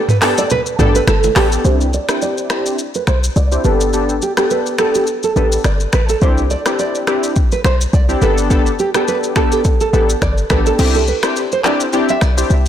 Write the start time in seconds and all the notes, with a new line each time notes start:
0.09 B4, mid tom, shaker
0.22 B3 D4 G4 A4, finger snap, cross-stick, clap, open hi-hat, shaker
0.38 D5, high bongo, shaker
0.50 B4, low conga, shaker
0.66 shaker
0.79 A1 B3 D4 G4 A4, mid tom, low bongo, shaker
0.95 B4, shaker
1.07 G1 A4, finger snap, cross-stick, high bongo, shaker
1.23 low bongo, shaker
1.36 A1 B3 D4 G4 A4, finger snap, cross-stick, clap, open hi-hat, shaker
1.52 shaker
1.65 C2 C4 D4 E4 G4 C5, shaker
1.81 shaker
1.93 D5, shaker
2.09 C4 D4 E4 G4, finger snap, cross-stick, shaker
2.22 D5, shaker
2.38 shaker
2.50 C4 D4 E4 G4, finger snap, cross-stick, shaker
2.66 shaker
2.79 shaker
2.95 B4, shaker
3.07 B1 C5, finger snap, cross-stick, shaker
3.24 shaker
3.36 C2 D5, shaker
3.52 C4 D4 E4 G4, shaker
3.64 G1 B3 D4 G4 A4 B4, shaker
3.81 shaker
3.93 B3 D4 G4 A4, shaker
4.09 shaker
4.22 G4, shaker
4.37 B3 D4 G4 A4, finger snap, cross-stick, shaker
4.51 B4, shaker
4.66 shaker
4.79 B3 D4 G4 A4, finger snap, cross-stick, shaker
4.95 G4, shaker
5.07 shaker
5.23 A4, shaker
5.36 A1 B3 D4 G4 A4 B4, shaker
5.52 shaker
5.64 G1 D5, finger snap, cross-stick, shaker
5.80 shaker
5.93 A1 B4, finger snap, cross-stick, shaker
6.09 A4, shaker
6.22 C2 C4 D4 E4 G4 C5, kick, shaker
6.38 shaker
6.50 D5, shaker
6.66 C4 D4 E4 G4, finger snap, cross-stick, shaker
6.79 D5, shaker
6.95 shaker
7.07 C4 D4 E4 G4, finger snap, cross-stick, shaker
7.23 shaker
7.36 kick, shaker
7.52 B4, shaker
7.64 B1 C5, finger snap, cross-stick, shaker
7.81 shaker
7.93 C2 D5, kick, shaker
8.09 C4 D4 E4 G4, shaker
8.21 G1 B3 D4 G4 A4 B4, shaker
8.38 shaker
8.50 B3 D4 G4 A4, kick, shaker
8.66 shaker
8.79 G4, shaker
8.94 B3 D4 G4 A4, finger snap, cross-stick, shaker
9.08 B4, shaker
9.24 shaker
9.36 B3 D4 G4 A4, finger snap, kick, cross-stick, shaker
9.52 G4, shaker
9.64 kick, shaker
9.81 A4, shaker
9.93 A1 B3 D4 G4 A4 B4, shaker
10.09 shaker
10.22 G1 D5, finger snap, kick, cross-stick, shaker
10.38 shaker
10.50 A1 B3 D4 G4 A4 B4, finger snap, kick, cross-stick, shaker
10.66 A4, shaker
10.79 C2 C4 D4 E4 G4, crash, shaker
10.95 A4, shaker
11.08 B4, shaker
11.23 C4 D4 E4 G4, finger snap, cross-stick, shaker
11.36 shaker
11.52 C5, shaker
11.64 C4 D4 E4 G4 D5, finger snap, cross-stick, clap, shaker
11.80 shaker
11.93 C4 D4 E4 G4, shaker
12.09 E5, shaker
12.21 B1 D5, finger snap, cross-stick, shaker
12.37 C4 D4 E4 G4, shaker
12.50 C2, shaker